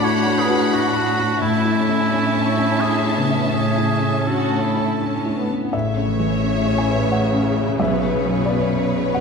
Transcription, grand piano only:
Already playing: A2 D4 F#4
0.04 E4
0.26 D4
0.49 F#4
0.73 E4
0.96 F#4
1.19 D4
1.42 A2
1.65 E4
1.88 C#4
2.11 D4
2.34 C#4
2.57 E4
2.83 D4
3.05 E4
3.29 C#4
3.54 A2
3.78 E4
4.02 C#4
4.27 D4
4.52 C#4
4.76 E4
5.01 D4
5.25 E4
5.50 C#4
5.73 A2 E5
5.97 C#4
6.20 E3
6.43 C#4
6.66 C#5
6.78 G#5
6.90 B4
7.12 C#5 F#5
7.34 C#4
7.57 C#5
7.80 B1 E5
8.03 B3
8.26 F#2
8.45 B3 D5
8.71 B4
8.93 B4
9.14 C#5 F#5

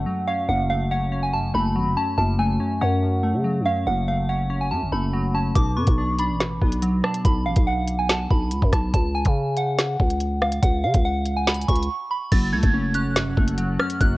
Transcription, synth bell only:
Already playing: F#5
0.28 F5
0.49 F#5
0.70 F5
0.91 F#5
1.23 G#5
1.33 A5
1.55 B5
1.97 A5
2.18 A5
2.39 G#5
2.81 F#5
3.66 F5
3.87 F#5
4.08 F5
4.29 F#5
4.61 G#5
4.71 A5
4.92 B5
5.35 A5
5.56 D6
5.77 C#6
6.19 B5
7.04 A5
7.25 B5
7.46 F5
7.67 F#5
7.99 G#5
8.09 A5
8.31 B5
8.73 A5
8.94 A5
9.15 G#5
9.57 F#5
10.42 F5
10.63 F#5
10.84 F5
11.05 F#5
11.37 G#5
11.47 B5
11.68 C#6
12.11 B5
12.32 A6
12.53 G#6
12.95 F#6
13.80 F6
14.01 F#6

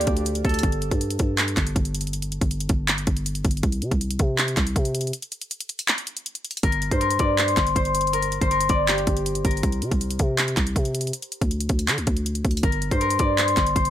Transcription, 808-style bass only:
0.07 D2
0.45 D2
0.63 G1
0.91 G2
1.20 G2
1.57 G1
1.76 G1
2.41 G1
2.70 G1
3.07 G1
3.45 G1
3.63 C2
3.82 C3
3.91 C2
4.20 C3
4.57 C2
4.76 C3
6.63 G1
6.91 G2
7.20 G2
7.57 G1
7.76 G1
8.41 G1
8.70 G1
9.07 G1
9.45 G1
9.63 C2
9.82 C3
9.91 C2
10.20 C3
10.57 C2
10.76 C3
11.41 D2
11.70 D2
11.88 D3
11.98 D2
12.07 D2
12.45 D2
12.63 G1
12.91 G2
13.20 G2
13.57 G1
13.76 G1

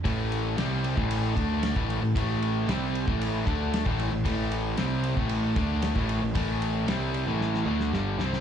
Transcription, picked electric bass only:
0.05 A1
0.58 C2
0.97 A1
1.37 D2
1.76 A1
2.03 A1
2.16 A1
2.68 C2
3.08 A1
3.47 D2
3.86 A1
4.11 A1
4.25 A1
4.78 C2
5.17 A1
5.56 D2
5.96 A1
6.23 A1
6.35 A1
6.88 C2
7.27 A1
7.66 D2
7.92 G1
8.18 C2

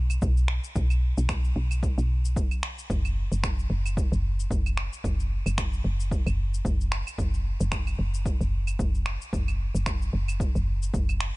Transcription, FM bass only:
Already playing: B1
0.22 B1
0.76 B1
1.18 B1
1.56 B1
1.98 B1
2.36 F#1
2.90 F#1
3.32 F#1
3.70 F#1
4.12 F#1
4.51 F#1
5.04 F#1
5.46 F#1
5.84 F#1
6.26 F#1
6.65 F#1
7.18 F#1
7.61 F#1
7.99 F#1
8.41 F#1
8.79 F#1
9.33 F#1
9.75 F#1
10.13 F#1
10.55 F#1
10.94 F#1

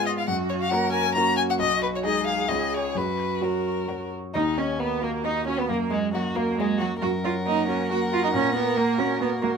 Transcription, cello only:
Already playing: F4
0.29 F#4
0.73 A#4
1.18 F#4
2.05 G#4
2.50 G#4
2.97 F#4
4.35 D#4
4.58 C#4
4.80 B3
5.03 A#3
5.24 D#4
5.46 C#4
5.59 B3
5.69 A#3
5.91 G#3
6.13 F#3
6.36 A#3
6.58 G#3
6.80 F#3
7.02 F#4
7.25 F4
7.47 D#4
7.68 C#4
7.90 F#4
8.13 F4
8.24 D#4
8.34 C#4
8.55 B3
8.76 A#3
8.99 C#4
9.21 B3
9.42 A#3

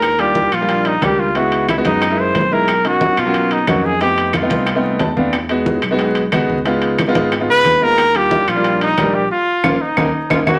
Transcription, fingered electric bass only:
Already playing: D#2
0.52 A#1
1.02 C#2
1.85 F#2
2.35 B1
3.18 B2
3.68 F2
4.50 C2
5.00 E2
5.83 B1
6.33 C#2
7.15 G#1
7.48 C#2
7.65 D#2
8.48 A#1
8.98 A#1
9.64 A#1
9.97 D#2
10.30 D#2
10.47 D#2

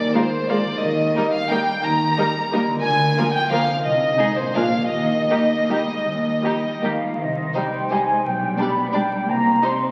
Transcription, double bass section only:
0.82 D#2
1.83 D#2
2.85 D2
3.85 C2
4.55 A#1
4.92 D#2
6.07 D#2
7.20 C2
8.25 B1
9.29 C2

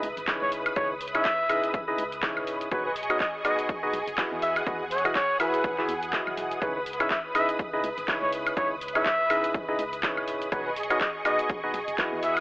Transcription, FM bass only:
0.03 C#2
0.17 G#1
0.42 C#2
0.76 C#2
1.15 G#1
1.74 G#1
1.98 C#2
2.37 G#1
2.71 B1
3.10 F#1
3.93 B1
4.07 F#1
4.32 E2
4.67 E2
5.05 B1
5.64 B1
5.88 E2
6.27 B1
6.37 B1
6.62 C#2
7.00 G#1
7.84 C#2
7.98 G#1
8.22 C#2
8.57 C#2
8.95 G#1
9.54 G#1
9.79 C#2
10.17 G#1
10.52 B1
10.90 F#1
11.74 B1
11.88 F#1
12.12 E2

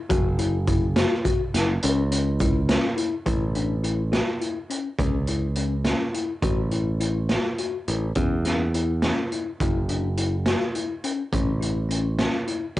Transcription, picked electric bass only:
0.10 F#1
1.54 F#1
1.84 C#2
3.27 A1
4.99 C#2
6.42 A1
7.88 A1
8.16 E2
9.61 F#1
11.33 A1

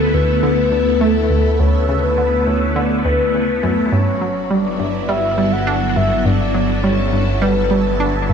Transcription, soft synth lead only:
Already playing: A4
0.14 B4
0.43 B4
1.01 A4
1.59 C#5
2.03 B4
2.47 C#5
2.76 D5
3.05 B4
3.92 C#5
4.51 D5
5.09 E5
5.52 F#5
5.96 E5
6.18 E5
6.25 D5
6.84 C#5
7.42 B4

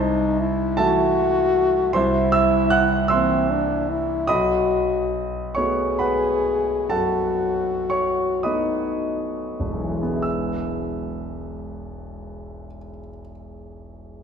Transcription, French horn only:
0.00 D#4
0.40 E4
0.79 F#4
1.95 E4
3.11 C4
3.50 D4
3.90 E4
4.30 F#4
5.57 G#4
6.92 F#4
8.45 D#4

